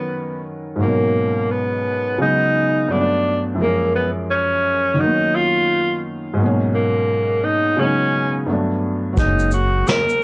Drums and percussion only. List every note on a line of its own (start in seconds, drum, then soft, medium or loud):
9.18 kick medium
9.18 closed hi-hat medium
9.18 shaker medium
9.39 shaker soft
9.51 shaker soft
9.87 snare medium
9.87 closed hi-hat medium
9.87 shaker medium
10.09 shaker soft